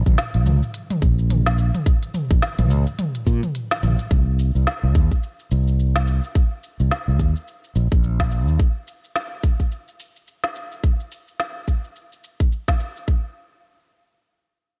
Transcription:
0.06 A#1, kick, mid tom, shaker
0.18 snare, closed hi-hat, shaker
0.34 A#1, closed hi-hat
0.46 C#2, mid tom, shaker
0.63 shaker
0.74 closed hi-hat, shaker
0.90 closed hi-hat, mid tom, shaker
1.02 A#1, kick, shaker
1.19 shaker
1.30 closed hi-hat, mid tom, shaker
1.46 snare, closed hi-hat
1.58 shaker
1.75 closed hi-hat, mid tom, shaker
1.86 kick, closed hi-hat, shaker
2.03 closed hi-hat, shaker
2.14 mid tom, shaker
2.31 A#1, kick, closed hi-hat, shaker
2.42 snare, closed hi-hat, shaker
2.59 A#1, closed hi-hat, mid tom, shaker
2.70 C#2, shaker
2.87 closed hi-hat, shaker
2.99 closed hi-hat, mid tom, shaker
3.15 closed hi-hat, shaker
3.27 A#2, kick, shaker
3.43 closed hi-hat, mid tom, shaker
3.55 closed hi-hat, shaker
3.71 snare, closed hi-hat, shaker
3.83 A#1, mid tom, shaker
3.99 closed hi-hat, shaker
4.11 C2, kick, shaker
4.39 shaker
4.55 C2, shaker
4.67 snare, shaker
4.83 C2
4.95 D#2, kick, shaker
5.11 kick, shaker
5.23 shaker
5.39 shaker
5.51 C2, shaker
5.68 shaker
5.79 shaker
5.96 snare
6.08 shaker
6.24 shaker
6.35 kick, shaker
6.63 shaker
6.80 C2, shaker
6.91 snare, shaker
7.08 C2
7.19 D#2, kick, shaker
7.36 shaker
7.48 shaker
7.64 shaker
7.76 A#1, shaker
7.92 A#1, kick, shaker
8.04 shaker
8.20 kick, snare
8.32 shaker
8.48 D#2, shaker
8.60 kick, shaker
8.88 shaker
9.04 shaker
9.16 snare, shaker
9.43 kick, shaker
9.60 kick, shaker
9.72 shaker
9.88 shaker
10.00 shaker
10.16 shaker
10.28 shaker
10.44 snare
10.56 shaker
10.72 shaker
10.84 kick, shaker
11.00 shaker
11.12 shaker
11.28 shaker
11.40 snare, shaker
11.68 kick, shaker
11.84 shaker
11.96 shaker
12.12 shaker
12.24 shaker
12.40 kick, shaker
12.52 shaker
12.68 kick, snare
12.80 shaker
12.97 shaker
13.08 kick

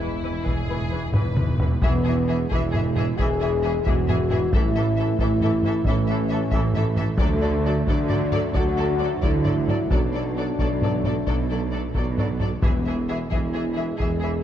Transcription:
Already playing: E1 E2 E3 G#3 E4
0.01 E3 B4
0.07 E2
0.14 E2
0.22 E2 E3 B4
0.30 E2
0.38 E2
0.44 E1 E2 E3 G#4 B4, taiko
0.52 E2
0.60 E2
0.67 E2 E3 B4
0.75 E2
0.81 E2
0.89 E2 E3 B4
0.97 E2
1.04 E2
1.12 E1 E2 E3 B4, taiko low-mid
1.19 E2
1.27 E2
1.35 E2 B4, taiko mid
1.39 E2 E3
1.50 E2
1.58 E2 E3 B4, taiko low
1.66 E2
1.82 E1 E2 E3 G#3 B3 G#4 E5, taiko
2.05 E3 G#4 E5
2.28 E3 G#4 E5
2.51 E1 E2 E3 E4 G#4 E5, taiko
2.72 E3 G#4 E5, taiko low-mid
2.96 E3 G#4 E5, taiko low-mid
3.18 E1 E2 E3 G#4 E5, taiko
3.40 E3 G#4 E5
3.64 E3 G#4 E5
3.84 E1 E2 E3 F#4 G#4 E5, taiko
4.08 E3 G#4 E5, taiko low-mid
4.30 E3 G#4 E5, taiko low-mid
4.52 A1 A2 E3 A3 E4 A4 E5, taiko
4.76 E3 A4 E5
4.97 E3 A4 E5
5.18 A1 A2 E3 E4 A4 E5, taiko
5.41 E3 A4 E5, taiko low-mid
5.63 E3 A4 E5, taiko low-mid
5.85 A1 A2 E3 C#4 A4 E5, taiko
6.08 E3 A4 E5
6.30 E3 A4 E5
6.51 A1 A2 E3 E5, taiko
6.55 A4
6.74 E3 A4 E5, taiko low-mid
6.96 E3 A4 E5, taiko low-mid
7.18 D2 D3 F#3 A3 A4 D5, taiko
7.42 F#3 A4 D5
7.65 F#3 A4 D5
7.86 D2 D3 F#3 D4 A4 D5, taiko
8.09 F#3 A4 D5, taiko low-mid
8.32 F#3 A4 D5, taiko low-mid
8.54 D2 D3 F#3 F#4 A4 D5, taiko
8.77 F#3 A4 D5
8.99 F#3 D5
9.03 A4
9.21 D2 D3 F#3 E4 A4 D5, taiko
9.44 F#3 A4 D5, taiko low-mid
9.68 F#3 A4 D5, taiko low-mid
9.89 B1 B2 F#3 A3 D4 A4 D5, taiko
10.14 F#3 A4 D5
10.37 F#3 A4 D5
10.58 B1 B2 F#3 A4 D5, taiko
10.82 F#3 A4 D5, taiko low-mid
11.04 F#3 A4 D5, taiko low-mid
11.26 B1 B2 F#3 A4 D5, taiko
11.50 F#3 A4 D5
11.72 F#3 A4 D5
11.94 B1 B2 F#3 A4 D5, taiko
12.18 F#3 A4 D5, taiko low-mid
12.40 F#3 A4 D5, taiko low-mid
12.62 E1 E2 E3 G#3 B3 G#4 E5, taiko
12.86 E3 G#4 E5
13.08 E3 G#4 E5
13.31 E1 E2 E3 E4 G#4 E5, taiko
13.54 E3 G#4 E5
13.74 E3 G#4 E5
13.97 E1 E2 E3 G#4 E5, taiko
14.20 E3 G#4 E5

